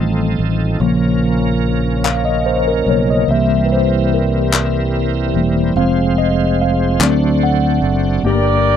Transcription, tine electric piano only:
Already playing: D#3 G3 A3
0.81 C#3 F3 A#3
2.04 F5
2.25 D#5
2.46 C5
2.67 A#4
2.88 C#3 F3 A#3 C#5
3.10 D#5
3.30 E3 G3 A#3 E5
3.64 B4
3.72 C5
4.14 A#4
5.36 E3 G3 A#3
5.76 F3 G#3 C4 F5
6.18 D#5
6.61 F5
7.02 F#3 A3 C4 D5
7.43 F#5
8.25 G2 A3 D4 G4 D5
8.31 A#3

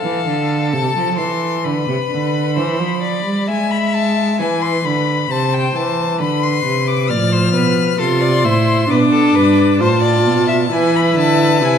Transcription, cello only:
0.03 E3
0.27 D3
0.73 C3
0.96 F3
1.18 E3
1.65 D3
1.88 C3
2.11 D3
2.57 E3
2.79 F3
3.25 G3
3.48 G#3
4.40 E3
4.86 D3
5.30 C3
5.76 E3
6.20 D3
6.65 C3
7.10 A2
7.54 B2
7.99 C3
8.44 A2
8.90 B2
9.36 G2
9.81 A2
10.26 B2
10.72 E3
11.17 D3
11.63 C3

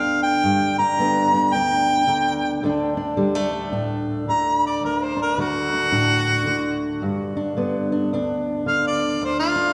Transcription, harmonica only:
Already playing: F5
0.23 G5
0.79 A#5
1.54 G5
4.30 A#5
4.66 D5
4.85 A#4
5.04 C5
5.22 A#4
5.40 F#4
8.68 F5
8.87 D5
9.25 C5
9.39 F4

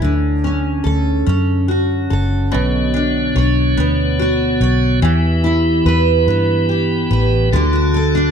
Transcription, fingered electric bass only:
0.03 D2
0.85 D2
1.27 F#2
2.11 F#1
2.53 B1
3.36 B1
3.77 D2
4.61 B1
5.02 E2
5.86 E2
6.27 G2
7.11 A1
7.53 D2

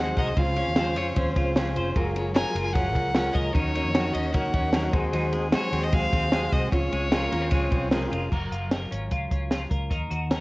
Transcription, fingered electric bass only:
Already playing: D#2
0.18 C2
0.37 C#2
0.67 D#2
0.97 F2
1.16 D#2
1.36 C#2
1.76 F1
1.96 F#1
2.55 F#1
2.95 C#2
3.35 C#2
3.55 D#2
3.84 F2
4.14 D#2
4.34 C#2
4.54 D#2
4.94 D#2
5.72 D#2
6.13 D#2
6.52 C2
6.72 C#2
6.92 C#2
7.32 D#2
7.52 C#2
7.72 C2
8.12 F1
8.32 F#1
8.51 F#1
8.92 G#1
9.11 C#2
9.31 C#2
9.71 C#2
9.91 D#2
10.11 D#2

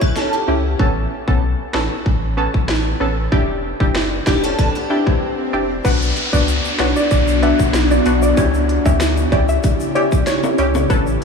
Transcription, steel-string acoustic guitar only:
0.01 B4
0.16 C#4 A4
0.33 B3 G4
4.27 B3 G4
4.44 C#4 A4
4.58 D4 B4
4.75 B3 G4

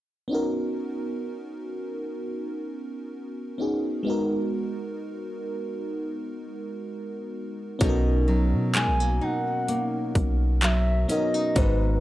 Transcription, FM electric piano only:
0.28 B3 C#4 D#4
0.33 F#4 A#4
3.58 B3 C#4 D#4 F#4 G#4
4.03 G#3 B3 D#4
4.08 F#4 A#4
7.79 B3 C#4 D#4 F#4 A4
7.89 A#4
11.08 B3 C#4 D#4 F#4 A#4
11.55 G#3 B3 D#4 F#4 B4

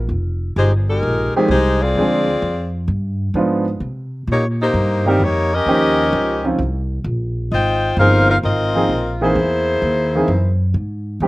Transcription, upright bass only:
0.09 F1
0.56 G1
1.03 A#1
1.34 muted upright bass stroke
1.48 C2
1.95 D2
2.42 F2
2.88 G2
3.34 G#2
3.80 C3
4.27 A#2
4.74 G2
5.20 F2
5.66 D#2
6.13 C#2
6.59 C2
7.04 A#1
7.52 G#1
7.97 G1
8.43 G#1
8.89 A#1
9.35 E2
9.82 D#2
10.28 F#2
10.74 G#2
11.20 F2

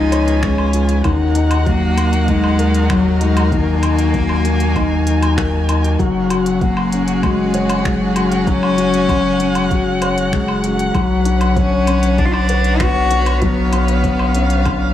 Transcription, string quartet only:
Already playing: F4 G#4 B4 G#5
1.04 D#4 F#4 A#4 F#5
3.52 G#5
5.99 C#4 F#4 G#4 F#5
10.94 D3 B4 C#5
13.42 F5

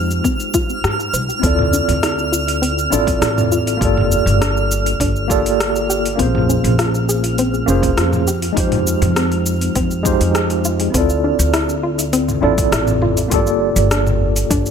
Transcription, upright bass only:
Already playing: F2
0.84 G#2
1.13 C2
1.43 D2
1.88 D2
2.92 A1
3.22 A1
3.81 G1
4.26 G1
5.00 G1
6.19 A#1
6.64 A#1
7.68 F1
7.98 F2
8.57 F2
9.02 F2
9.76 F2
10.21 F2
10.94 D2
11.39 D2
12.43 A1
12.72 A1
13.32 G1
13.76 G1
14.50 G1

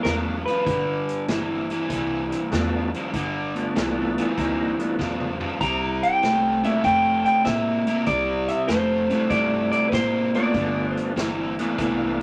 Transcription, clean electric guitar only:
0.03 A#4
0.46 B4
5.61 A#5
6.03 G5
6.65 E5
6.84 G5
7.25 G5
7.45 E5
8.07 D5
8.49 E5
8.68 C5
9.30 D5
9.72 D5
9.89 B4
9.94 C5
10.35 D5
10.90 C5

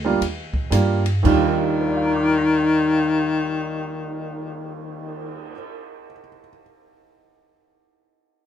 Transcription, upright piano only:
0.05 G3 A#3 D4 F4
0.70 G3 A#3 D4 F4
1.23 D#2 D#3 G3 D4 F4
1.81 A#4
1.88 D5
1.97 F5
2.06 A#5
2.15 D6
2.27 F6
2.38 A#6

